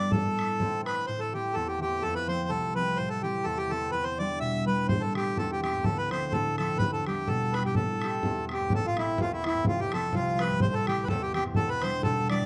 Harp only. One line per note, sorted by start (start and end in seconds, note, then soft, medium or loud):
0.00 0.16 G2 medium
0.00 0.16 G3 soft
0.00 0.60 A3 soft
0.00 0.67 B3 medium
0.00 1.48 D4 soft
0.00 1.30 E4 soft
0.12 1.07 A2 medium
0.60 1.12 E3 soft
0.60 1.34 A3 soft
0.60 1.34 C4 medium
1.08 1.60 A2 medium
1.33 1.80 E3 soft
1.33 1.81 A3 soft
1.33 1.81 C4 medium
1.55 2.07 E2 medium
1.81 2.07 E3 soft
1.81 2.27 A3 soft
1.81 2.28 C4 medium
2.02 2.55 F2 medium
2.27 2.74 F3 medium
2.27 2.75 A3 soft
2.27 2.76 C4 medium
2.49 3.03 C2 medium
2.75 3.03 F3 soft
2.75 3.23 A3 soft
2.75 3.23 C4 medium
2.98 3.51 A2 soft
3.23 3.70 E3 soft
3.23 3.71 A3 soft
3.23 3.72 C4 medium
3.45 3.92 E2 medium
3.71 3.98 E3 soft
3.71 5.13 A3 soft
3.71 4.47 C4 soft
3.93 4.94 E2 medium
4.19 4.46 E3 medium
4.19 4.66 G3 soft
4.19 4.67 D4 medium
4.41 4.94 B2 medium
4.66 4.94 E3 soft
4.66 4.94 G3 soft
4.66 6.11 D4 soft
4.88 5.42 A2 medium
5.14 5.61 E3 medium
5.14 5.63 A3 soft
5.14 5.63 C4 medium
5.37 5.89 E2 medium
5.62 5.89 E3 soft
5.62 8.03 A3 soft
5.62 6.10 C4 medium
5.84 6.85 D2 medium
6.10 6.58 F3 soft
6.10 6.59 C4 soft
6.10 6.60 D4 medium
6.33 6.85 A2 medium
6.59 6.85 F3 soft
6.59 7.13 C4 soft
6.59 9.40 D4 medium
6.81 7.80 E2 soft
7.07 7.54 G3 soft
7.07 7.56 B3 soft
7.07 7.56 E4 medium
7.29 7.80 B2 medium
7.55 7.80 G3 soft
7.55 8.09 B3 soft
7.55 8.98 E4 soft
7.78 8.28 A2 medium
8.03 8.49 A3 soft
8.03 8.50 C4 soft
8.03 8.50 G4 medium
8.24 8.76 E2 medium
8.50 8.97 A3 soft
8.50 8.98 C4 soft
8.50 10.86 G4 soft
8.72 9.71 A1 medium
8.72 9.23 A2 medium
8.97 9.44 A3 medium
8.97 9.45 C4 medium
8.97 9.46 E4 medium
9.20 9.71 E2 medium
9.45 9.93 A3 soft
9.45 9.93 C4 soft
9.45 9.73 E4 medium
9.67 10.66 F1 soft
9.67 10.19 F2 medium
9.92 10.38 F3 soft
9.92 10.39 A3 soft
9.92 10.40 C4 medium
10.13 10.66 C2 medium
10.39 10.66 F3 soft
10.39 10.88 A3 soft
10.39 10.89 C4 soft
10.61 11.61 A1 medium
10.61 11.14 A2 medium
10.87 11.34 E3 soft
10.87 11.35 A3 soft
10.87 11.36 C4 medium
11.10 11.56 E2 medium
11.35 11.61 E3 soft
11.35 12.46 A3 soft
11.35 12.10 C4 medium
11.56 12.46 E1 soft
11.56 12.46 E2 medium
11.82 12.09 E3 medium
11.82 12.29 G3 medium
11.82 12.31 D4 medium
12.04 12.46 B2 medium
12.30 12.46 E3 medium
12.30 12.46 G3 soft
12.30 12.46 D4 medium